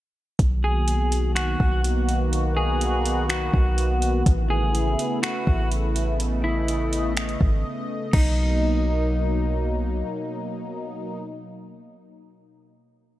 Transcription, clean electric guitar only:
0.64 1.32 G#4 medium
1.35 1.81 F#4 medium
2.57 3.25 G#4 medium
3.29 4.22 F#4 medium
4.50 5.19 G#4 medium
5.23 5.68 F#4 medium
6.44 7.13 E4 medium
8.13 9.54 D#4 medium

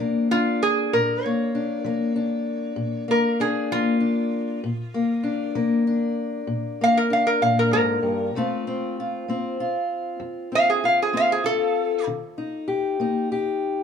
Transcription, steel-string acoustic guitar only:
0.00 0.55 F3 medium
0.00 1.25 A#3 medium
0.00 0.31 D4 medium
0.31 1.54 D4 medium
0.93 1.48 A#2 medium
1.25 1.85 A#3 medium
1.55 2.15 D4 medium
1.84 2.40 F3 medium
1.84 3.07 A#3 medium
2.16 3.39 D4 medium
2.76 3.33 A#2 medium
3.08 3.70 A#3 medium
3.40 3.99 D4 medium
3.72 4.27 F3 medium
3.72 4.61 A#3 medium
4.00 4.59 D4 medium
4.64 5.19 A#2 medium
4.94 5.54 A#3 medium
5.23 5.86 D4 medium
5.55 6.12 F3 medium
5.55 6.80 A#3 medium
5.87 7.09 D4 medium
6.47 7.04 A#2 medium
6.81 8.32 A#3 medium
7.10 8.31 D4 medium
7.41 7.73 A#2 medium
7.72 8.02 G#2 medium
8.03 8.34 G2 medium
8.35 8.91 F2 medium
8.35 9.27 A3 medium
8.35 8.66 C4 medium
8.35 8.99 F4 medium
8.67 9.28 C4 medium
9.00 9.59 F4 medium
9.28 9.84 A3 medium
9.28 10.51 C4 medium
9.60 10.83 F4 medium
10.20 10.76 F2 medium
10.52 11.12 C4 medium
10.84 11.43 F4 medium
11.13 11.69 A3 medium
11.13 12.03 C4 medium
11.44 12.03 F4 medium
12.07 12.62 D#3 medium
12.38 12.99 D#4 medium
12.68 13.30 G4 medium
13.00 13.55 A#3 medium
13.00 13.83 D#4 medium
13.32 13.83 G4 medium

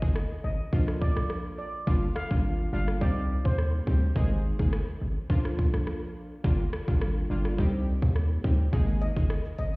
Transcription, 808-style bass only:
0.02 0.27 G1 medium
0.44 0.57 G#1 loud
0.73 1.10 A#1 loud
1.16 1.28 A#1 medium
1.87 2.12 G1 loud
2.31 2.67 G#1 medium
2.73 3.03 G1 loud
3.01 3.39 C2 loud
3.45 3.81 D#2 loud
3.87 4.12 D2 medium
4.16 4.53 G#1 loud
4.59 4.84 G1 medium
5.01 5.14 G#1 medium
5.30 5.67 A#1 loud
5.74 5.85 A#1 medium
6.44 6.69 G1 loud
6.88 7.24 G#1 medium
7.30 7.60 G1 medium
7.58 7.96 C2 loud
8.02 8.38 D#2 loud
8.44 8.69 D2 medium
8.73 9.10 G#1 loud
9.16 9.41 G1 medium
9.59 9.72 G#1 medium

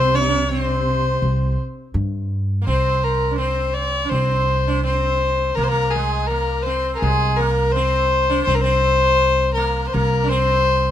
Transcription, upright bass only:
0.00 1.19 C2 medium
1.22 1.55 C2 medium
1.94 2.63 G2 medium
2.67 4.08 C2 medium
4.11 5.53 C2 medium
5.57 6.99 C2 medium
7.02 8.44 C2 medium
8.47 9.89 C2 medium
9.94 10.91 C2 medium

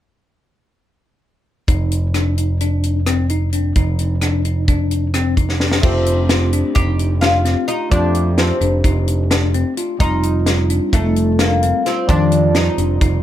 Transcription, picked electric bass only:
1.68 3.72 F1 medium
3.76 5.80 F1 medium
5.83 6.62 F1 medium
6.76 7.54 F1 medium
7.92 8.50 F2 medium
8.61 8.81 F1 medium
8.84 9.63 F1 medium
10.00 10.79 F1 medium
10.93 11.71 F1 medium
12.09 12.68 F2 medium
12.78 12.98 F1 medium
13.01 13.23 F1 medium

